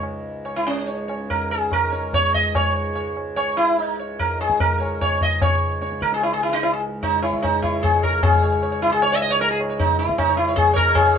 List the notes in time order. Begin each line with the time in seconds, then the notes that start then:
Already playing: C#2 G#2
0.03 tabla na
0.45 C#5, tabla na
0.56 E4
0.67 C#4, tabla na
0.87 C#5, tabla tin
1.08 C#5, tabla na
1.30 A#4, tabla tin, tabla ge
1.51 G#4
1.72 A#4, tabla na, tabla ge
1.92 C#5, tabla te
2.14 C#5, tabla na, tabla ge
2.34 D#5, tabla ge
2.55 C#5, tabla na, tabla ge
2.95 C#5, tabla na
3.17 tabla na
3.36 C#5, tabla na
3.57 E4
3.79 D#4, tabla tin
3.99 C#5
4.19 A#4, tabla tin, tabla ge
4.41 G#4, tabla na
4.50 tabla ke
4.60 A#4, tabla tin, tabla ge
4.80 C#5, tabla na
5.01 C#5, tabla na, tabla ge
5.21 D#5, tabla ge
5.42 C#5, tabla na, tabla ge
5.81 C#5, tabla te
5.92 tabla te
6.02 A#4, tabla ke
6.12 G#4, tabla te
6.22 E4, tabla na
6.33 G#4
6.43 E4
6.49 E4
6.53 D#4
6.63 E4, tabla tin
6.73 G#4
7.03 D#4 C#5, tabla tin, tabla ge
7.22 E4 C#5, tabla na
7.33 tabla ke
7.42 D#4 C#5, tabla na, tabla ge
7.62 E4 C#5, tabla ge
7.83 G#4 C#5, tabla na, tabla ge
8.03 A#4 C#5, tabla ge
8.22 C#2 G#2 G#4, tabla na, tabla ge
8.33 C#5
8.43 C#5
8.52 C#5
8.62 C#5, tabla na
8.72 C#5
8.82 E4
8.92 G#4
9.02 C#5, tabla na
9.12 E5
9.22 D#5
9.30 C#5
9.41 A#4, tabla tin
9.51 G#4
9.61 tabla na
9.70 C#5
9.79 D#4, tabla tin, tabla ge
9.99 E4, tabla na
10.09 tabla ke
10.18 D#4, tabla na, tabla ge
10.29 C#5
10.37 E4, tabla te
10.48 C#5
10.56 G#4, tabla na, tabla ge
10.73 A#4 C#5, tabla ge
10.88 C#5
10.95 G#4, tabla na, tabla ge
11.06 C#5
11.15 C#5